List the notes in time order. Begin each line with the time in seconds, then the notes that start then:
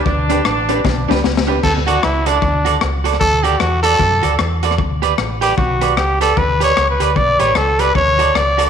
Already playing: D4
0.06 D2, kick
0.28 D4 G4 B4 D5, closed hi-hat
0.45 A1, cross-stick
0.68 D4 G4 B4 D5, closed hi-hat
0.84 B1, muted clean electric guitar stroke, kick, snare
1.08 C#2 D4 G4 B4 D5, snare
1.24 C#2, muted clean electric guitar stroke, snare
1.37 snare
1.47 D4 G4 B4 D5
1.63 D2 A4, kick, crash
1.87 F#4 A4 D5, closed hi-hat
2.03 C#2 E4, cross-stick
2.26 D4 F#4 A4 D5, closed hi-hat
2.42 D2, kick
2.65 F#4 A4 D5, closed hi-hat
2.81 C#2, muted clean electric guitar stroke, cross-stick
3.04 F#4 A4 D5, closed hi-hat
3.13 cross-stick
3.20 D2 A4, kick
3.43 F#4 G4 A4 D5, closed hi-hat
3.59 E2 F#4, cross-stick
3.83 F#4 A4 D5, closed hi-hat
3.99 F#2, kick
4.23 D2 F#4 A4 D5, closed hi-hat
4.39 E2, muted clean electric guitar stroke, cross-stick
4.63 F#4 A4 D5, closed hi-hat
4.71 cross-stick
4.78 D2, kick
5.02 G4 B4 D5, closed hi-hat
5.18 A1, cross-stick
5.41 G4 B4 D5, closed hi-hat
5.57 B1 F#4, kick
5.81 G4 B4 D5, closed hi-hat
5.97 C#2 G4, muted clean electric guitar stroke, cross-stick
6.21 G4 A4 B4 D5, closed hi-hat
6.37 D2 B4, kick
6.60 G4 B4 C#5 D5, closed hi-hat
6.77 C#2, cross-stick
6.90 B4
7.00 D2 G4 B4 D5, closed hi-hat
7.16 B1 D5, kick
7.39 A1 G4 B4 C#5 D5, closed hi-hat
7.55 C#2 A4, muted clean electric guitar stroke, cross-stick
7.79 G4 B4 D5, closed hi-hat
7.95 D2 C#5, kick
8.19 F#4 A4 D5, closed hi-hat
8.35 C#2 D5, cross-stick
8.58 F#4 A4 D5, closed hi-hat